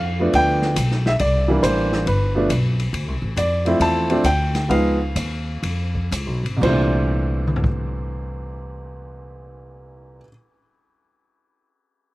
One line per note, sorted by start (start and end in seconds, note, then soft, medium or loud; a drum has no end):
0.00 0.32 F2 medium
0.00 0.15 F5 loud
0.19 0.74 F3 medium
0.19 0.75 A3 medium
0.19 0.75 B3 medium
0.19 0.75 D4 medium
0.33 0.76 D2 medium
0.33 1.02 G5 loud
0.33 kick soft
0.33 ride medium
0.62 snare soft
0.76 1.18 B1 medium
0.76 kick soft
0.76 hi-hat pedal medium
0.76 ride medium
0.91 snare soft
1.06 1.12 E5 medium
1.06 snare soft
1.19 1.62 C2 medium
1.19 1.60 D5 medium
1.19 kick soft
1.19 ride medium
1.48 2.03 E3 medium
1.48 2.04 G3 medium
1.48 2.04 A#3 medium
1.48 2.05 D4 medium
1.63 2.05 A1 medium
1.63 2.03 C5 medium
1.63 kick soft
1.63 hi-hat pedal medium
1.63 ride medium
1.93 snare soft
2.06 2.48 G1 medium
2.06 2.75 B4 medium
2.06 kick soft
2.06 ride medium
2.35 2.48 F3 medium
2.35 2.49 A3 medium
2.35 2.49 B3 medium
2.35 2.49 D4 medium
2.49 2.92 B1 medium
2.49 kick soft
2.49 hi-hat pedal medium
2.49 ride medium
2.80 ride soft
2.93 3.08 D2 medium
2.93 kick soft
2.93 ride medium
3.08 3.21 C2 medium
3.22 3.35 A1 medium
3.36 3.79 F2 medium
3.36 3.82 D5 medium
3.36 kick soft
3.36 hi-hat pedal medium
3.36 ride medium
3.65 4.06 F3 medium
3.65 4.07 A3 medium
3.65 4.07 C4 medium
3.65 4.07 E4 medium
3.65 ride soft
3.80 4.23 E2 medium
3.80 4.27 A5 loud
3.80 kick soft
3.80 ride medium
4.09 4.23 F3 medium
4.09 4.23 A3 medium
4.09 4.23 C4 medium
4.09 4.24 D4 medium
4.09 ride soft
4.24 4.68 D2 medium
4.24 4.71 G5 medium
4.24 kick soft
4.24 hi-hat pedal medium
4.24 ride medium
4.55 snare soft
4.55 ride soft
4.68 5.14 C#2 medium
4.68 4.96 F3 medium
4.68 4.97 G#3 medium
4.68 4.97 B3 medium
4.68 4.97 D#4 medium
4.68 6.08 F5 medium
4.68 kick soft
4.68 ride medium
5.16 5.62 D#2 medium
5.16 kick soft
5.16 hi-hat pedal medium
5.16 ride medium
5.63 6.10 F2 medium
5.63 kick soft
5.63 ride medium
5.95 kick soft
6.11 6.26 C#2 medium
6.11 kick soft
6.11 hi-hat pedal medium
6.11 ride medium
6.26 6.43 B1 medium
6.44 6.60 G#1 medium
6.44 ride soft
6.57 10.18 C2 medium
6.57 10.21 A#2 medium
6.62 10.18 C2 medium
6.62 10.24 E3 medium
6.62 10.20 C5 medium
6.62 kick medium
6.62 crash medium
6.66 10.27 A3 medium
6.66 10.30 D4 medium
7.47 mid tom medium
7.56 floor tom medium
7.64 kick medium